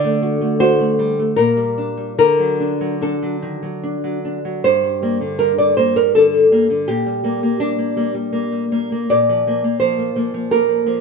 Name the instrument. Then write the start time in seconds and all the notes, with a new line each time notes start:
nylon-string guitar
Already playing: D3 D5
0.04 A3
0.22 F#4
0.41 A3
0.60 F#4 C5
0.80 A3
0.99 G3
1.19 A3
1.36 A#2 A#4
1.57 G3
1.78 D4
1.97 G3
2.18 D3 A#4
2.39 F#3
2.60 D4
2.81 F#3
3.01 D4 A4
3.23 F#3
3.42 D#3
3.63 F#3
3.83 D4
4.04 F#3
4.25 D4
4.45 F#3
4.64 G2 C5
4.84 G3
5.02 G3 A#3
5.21 D3
5.39 G3 A#4
5.58 D3 D5
5.77 G3 A#3 C5
5.96 G3 A#4
6.15 D3 A4
6.34 G3
6.52 G3 A#3
6.70 D3
6.88 A#2 G4
7.06 G3
7.24 G3 A#3
7.43 A#3
7.60 G3 D4
7.78 A#3
7.97 G3 A#3
8.14 G3
8.33 A#3
8.52 G3
8.72 G3 A#3
8.92 A#3
9.10 A#2 D5
9.29 F3
9.47 F3 A#3
9.64 A#3
9.80 F3 C5
9.99 A#3
10.16 F3 A#3
10.34 F3
10.51 A#3 A#4
10.69 F3
10.86 F3 A#3